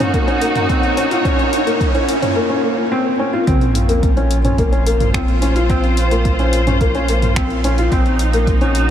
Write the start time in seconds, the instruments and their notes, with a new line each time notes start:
Already playing: string section A#3 D#4 F#4, riser
0.00 closed hi-hat, mid tom
0.14 felt piano A#3, kick, closed hi-hat
0.27 felt piano C#4, closed hi-hat
0.41 felt piano A#3, closed hi-hat
0.55 string section C#5, closed hi-hat, mid tom
0.69 felt piano C4, kick, closed hi-hat
0.83 closed hi-hat
0.97 felt piano C#4, closed hi-hat
1.11 felt piano F4, closed hi-hat
1.25 felt piano C#4, kick, closed hi-hat
1.39 closed hi-hat
1.53 closed hi-hat
1.66 felt piano A#3, closed hi-hat
1.81 kick, closed hi-hat
1.94 felt piano C#4, closed hi-hat
2.09 closed hi-hat
2.22 felt piano C#4, closed hi-hat, mid tom
2.36 felt piano A#3
2.50 felt piano C#4
2.64 felt piano A#3
2.92 felt piano C4
3.19 felt piano C#4
3.33 felt piano F4
3.47 sub bass A#1, felt piano C4, kick, closed hi-hat, sub drop
3.61 closed hi-hat
3.75 closed hi-hat
3.89 felt piano A#3, closed hi-hat
3.93 string section F4
4.03 kick, closed hi-hat
4.17 felt piano C#4, closed hi-hat
4.31 closed hi-hat
4.45 felt piano C#4, closed hi-hat, mid tom
4.58 felt piano A#3, kick, closed hi-hat
4.63 string section C5
4.72 felt piano C#4, closed hi-hat
4.86 felt piano A#3, closed hi-hat
5.00 closed hi-hat, mid tom
5.14 felt piano C4, finger snap, kick, closed hi-hat
5.28 closed hi-hat
5.42 felt piano C#4, closed hi-hat
5.56 felt piano F4, closed hi-hat
5.70 felt piano C4, kick, closed hi-hat
5.84 closed hi-hat
5.97 closed hi-hat
6.11 felt piano A#3, closed hi-hat
6.25 kick, closed hi-hat
6.39 felt piano C#4, closed hi-hat
6.53 closed hi-hat
6.67 felt piano C#4, closed hi-hat, mid tom
6.81 felt piano A#3, kick, closed hi-hat
6.95 felt piano C#4, closed hi-hat
7.08 felt piano A#3, closed hi-hat
7.22 closed hi-hat, mid tom
7.36 felt piano C4, finger snap, kick, closed hi-hat
7.50 closed hi-hat
7.64 felt piano C#4, closed hi-hat
7.78 felt piano F4, closed hi-hat
7.92 sub bass A#1, felt piano C4, string section D#4, kick, closed hi-hat
8.06 closed hi-hat
8.19 closed hi-hat
8.33 felt piano A#3, closed hi-hat
8.47 kick, closed hi-hat
8.61 felt piano C#4, string section F#4, closed hi-hat
8.75 closed hi-hat